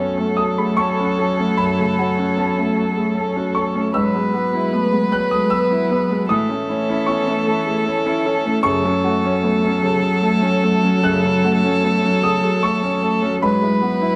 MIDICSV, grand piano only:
0, 0, Header, 1, 2, 480
1, 0, Start_track
1, 0, Key_signature, 3, "minor"
1, 0, Tempo, 797872
1, 949, Time_signature, 3, 2, 24, 8
1, 1426, Tempo, 785340
1, 6226, Tempo, 800000
1, 8586, End_track
2, 0, Start_track
2, 0, Title_t, "Grand piano"
2, 0, Program_c, 0, 0
2, 0, Control_c, 0, 64, 127
2, 0, Note_on_c, 0, 42, 62
2, 0, Note_on_c, 0, 59, 48
2, 0, Note_on_c, 0, 61, 53
2, 0, Note_on_c, 0, 66, 54
2, 0, Note_on_c, 0, 85, 79
2, 106, Note_off_c, 0, 59, 0
2, 118, Note_off_c, 0, 61, 0
2, 118, Note_on_c, 0, 61, 50
2, 200, Note_off_c, 0, 85, 0
2, 221, Note_on_c, 0, 87, 83
2, 230, Note_on_c, 0, 69, 57
2, 304, Note_off_c, 0, 61, 0
2, 335, Note_off_c, 0, 87, 0
2, 350, Note_on_c, 0, 83, 77
2, 351, Note_on_c, 0, 68, 43
2, 420, Note_off_c, 0, 69, 0
2, 460, Note_off_c, 0, 83, 0
2, 462, Note_on_c, 0, 85, 98
2, 469, Note_off_c, 0, 68, 0
2, 471, Note_on_c, 0, 69, 60
2, 597, Note_on_c, 0, 61, 56
2, 661, Note_off_c, 0, 69, 0
2, 710, Note_on_c, 0, 69, 52
2, 785, Note_off_c, 0, 61, 0
2, 837, Note_on_c, 0, 61, 56
2, 902, Note_off_c, 0, 69, 0
2, 922, Note_off_c, 0, 85, 0
2, 924, Note_off_c, 0, 42, 0
2, 947, Note_on_c, 0, 83, 93
2, 958, Note_on_c, 0, 42, 57
2, 960, Control_c, 0, 64, 0
2, 961, Note_off_c, 0, 66, 0
2, 1025, Note_off_c, 0, 61, 0
2, 1042, Control_c, 0, 64, 127
2, 1080, Note_on_c, 0, 49, 51
2, 1196, Note_on_c, 0, 66, 52
2, 1266, Note_off_c, 0, 49, 0
2, 1315, Note_on_c, 0, 61, 57
2, 1383, Note_off_c, 0, 66, 0
2, 1402, Note_off_c, 0, 83, 0
2, 1423, Note_on_c, 0, 59, 48
2, 1426, Note_on_c, 0, 81, 73
2, 1502, Note_off_c, 0, 61, 0
2, 1545, Note_off_c, 0, 59, 0
2, 1551, Note_on_c, 0, 61, 48
2, 1662, Note_on_c, 0, 69, 51
2, 1740, Note_off_c, 0, 61, 0
2, 1786, Note_on_c, 0, 68, 41
2, 1856, Note_off_c, 0, 69, 0
2, 1882, Note_off_c, 0, 81, 0
2, 1904, Note_on_c, 0, 69, 62
2, 1906, Note_off_c, 0, 68, 0
2, 2031, Note_on_c, 0, 61, 56
2, 2098, Note_off_c, 0, 69, 0
2, 2145, Note_on_c, 0, 85, 81
2, 2147, Note_on_c, 0, 69, 55
2, 2222, Note_off_c, 0, 61, 0
2, 2271, Note_on_c, 0, 61, 60
2, 2341, Note_off_c, 0, 69, 0
2, 2370, Note_off_c, 0, 42, 0
2, 2371, Note_off_c, 0, 85, 0
2, 2385, Note_on_c, 0, 88, 94
2, 2391, Note_off_c, 0, 61, 0
2, 2394, Note_on_c, 0, 44, 67
2, 2401, Control_c, 0, 64, 0
2, 2499, Control_c, 0, 64, 127
2, 2506, Note_on_c, 0, 59, 50
2, 2629, Note_on_c, 0, 66, 52
2, 2701, Note_off_c, 0, 59, 0
2, 2746, Note_on_c, 0, 59, 58
2, 2822, Note_off_c, 0, 66, 0
2, 2871, Note_on_c, 0, 57, 53
2, 2940, Note_off_c, 0, 59, 0
2, 2989, Note_on_c, 0, 59, 48
2, 2991, Note_off_c, 0, 57, 0
2, 3084, Note_off_c, 0, 88, 0
2, 3104, Note_on_c, 0, 71, 59
2, 3108, Note_on_c, 0, 90, 91
2, 3182, Note_off_c, 0, 59, 0
2, 3221, Note_off_c, 0, 90, 0
2, 3224, Note_on_c, 0, 69, 44
2, 3224, Note_on_c, 0, 87, 80
2, 3299, Note_off_c, 0, 71, 0
2, 3339, Note_off_c, 0, 87, 0
2, 3339, Note_on_c, 0, 88, 100
2, 3346, Note_on_c, 0, 71, 60
2, 3347, Note_off_c, 0, 69, 0
2, 3465, Note_on_c, 0, 59, 57
2, 3541, Note_off_c, 0, 71, 0
2, 3581, Note_on_c, 0, 71, 61
2, 3660, Note_off_c, 0, 59, 0
2, 3701, Note_on_c, 0, 59, 58
2, 3778, Note_off_c, 0, 71, 0
2, 3800, Note_off_c, 0, 88, 0
2, 3808, Note_off_c, 0, 44, 0
2, 3823, Note_on_c, 0, 87, 96
2, 3825, Note_off_c, 0, 59, 0
2, 3827, Note_on_c, 0, 45, 68
2, 3842, Control_c, 0, 64, 0
2, 3925, Control_c, 0, 64, 127
2, 3943, Note_on_c, 0, 61, 57
2, 4066, Note_on_c, 0, 64, 58
2, 4136, Note_off_c, 0, 61, 0
2, 4191, Note_on_c, 0, 61, 67
2, 4257, Note_off_c, 0, 64, 0
2, 4278, Note_off_c, 0, 87, 0
2, 4295, Note_on_c, 0, 85, 81
2, 4302, Note_on_c, 0, 59, 51
2, 4379, Note_off_c, 0, 61, 0
2, 4421, Note_on_c, 0, 61, 62
2, 4423, Note_off_c, 0, 59, 0
2, 4540, Note_on_c, 0, 69, 63
2, 4614, Note_off_c, 0, 61, 0
2, 4660, Note_on_c, 0, 68, 48
2, 4733, Note_off_c, 0, 69, 0
2, 4753, Note_off_c, 0, 85, 0
2, 4774, Note_on_c, 0, 69, 62
2, 4781, Note_off_c, 0, 68, 0
2, 4901, Note_on_c, 0, 61, 63
2, 4970, Note_off_c, 0, 69, 0
2, 5023, Note_on_c, 0, 69, 60
2, 5093, Note_off_c, 0, 61, 0
2, 5138, Note_on_c, 0, 61, 59
2, 5215, Note_off_c, 0, 69, 0
2, 5236, Note_off_c, 0, 45, 0
2, 5252, Note_on_c, 0, 85, 111
2, 5256, Note_on_c, 0, 42, 79
2, 5260, Note_off_c, 0, 61, 0
2, 5275, Control_c, 0, 64, 0
2, 5355, Control_c, 0, 64, 127
2, 5384, Note_on_c, 0, 61, 65
2, 5504, Note_on_c, 0, 66, 66
2, 5575, Note_off_c, 0, 61, 0
2, 5629, Note_on_c, 0, 61, 69
2, 5695, Note_off_c, 0, 66, 0
2, 5743, Note_on_c, 0, 59, 57
2, 5818, Note_off_c, 0, 61, 0
2, 5862, Note_off_c, 0, 59, 0
2, 5869, Note_on_c, 0, 61, 66
2, 5983, Note_on_c, 0, 69, 63
2, 6058, Note_off_c, 0, 61, 0
2, 6105, Note_on_c, 0, 68, 46
2, 6176, Note_off_c, 0, 69, 0
2, 6225, Note_off_c, 0, 68, 0
2, 6230, Note_on_c, 0, 69, 69
2, 6347, Note_on_c, 0, 61, 60
2, 6422, Note_off_c, 0, 69, 0
2, 6470, Note_on_c, 0, 69, 59
2, 6544, Note_off_c, 0, 61, 0
2, 6594, Note_on_c, 0, 61, 67
2, 6667, Note_off_c, 0, 69, 0
2, 6686, Note_off_c, 0, 85, 0
2, 6688, Note_off_c, 0, 42, 0
2, 6713, Note_on_c, 0, 90, 105
2, 6717, Note_on_c, 0, 42, 69
2, 6727, Control_c, 0, 64, 0
2, 6789, Note_off_c, 0, 61, 0
2, 6813, Control_c, 0, 64, 127
2, 6836, Note_on_c, 0, 49, 60
2, 6960, Note_on_c, 0, 66, 65
2, 7028, Note_off_c, 0, 49, 0
2, 7078, Note_on_c, 0, 61, 59
2, 7149, Note_off_c, 0, 66, 0
2, 7193, Note_on_c, 0, 59, 54
2, 7267, Note_off_c, 0, 61, 0
2, 7307, Note_on_c, 0, 61, 60
2, 7313, Note_off_c, 0, 59, 0
2, 7407, Note_off_c, 0, 90, 0
2, 7433, Note_on_c, 0, 87, 91
2, 7435, Note_on_c, 0, 69, 64
2, 7500, Note_off_c, 0, 61, 0
2, 7557, Note_on_c, 0, 68, 50
2, 7623, Note_off_c, 0, 69, 0
2, 7653, Note_off_c, 0, 87, 0
2, 7669, Note_on_c, 0, 85, 90
2, 7670, Note_on_c, 0, 69, 73
2, 7672, Note_off_c, 0, 68, 0
2, 7793, Note_on_c, 0, 61, 56
2, 7859, Note_off_c, 0, 69, 0
2, 7910, Note_on_c, 0, 69, 65
2, 7980, Note_off_c, 0, 61, 0
2, 8028, Note_on_c, 0, 61, 65
2, 8099, Note_off_c, 0, 69, 0
2, 8121, Note_off_c, 0, 85, 0
2, 8122, Note_off_c, 0, 42, 0
2, 8146, Note_off_c, 0, 61, 0
2, 8146, Note_on_c, 0, 83, 94
2, 8148, Note_on_c, 0, 44, 71
2, 8156, Control_c, 0, 64, 0
2, 8251, Control_c, 0, 64, 127
2, 8269, Note_on_c, 0, 64, 55
2, 8382, Note_on_c, 0, 66, 52
2, 8459, Note_off_c, 0, 64, 0
2, 8506, Note_on_c, 0, 64, 55
2, 8576, Note_off_c, 0, 66, 0
2, 8586, Note_off_c, 0, 44, 0
2, 8586, Note_off_c, 0, 64, 0
2, 8586, Note_off_c, 0, 83, 0
2, 8586, End_track
0, 0, End_of_file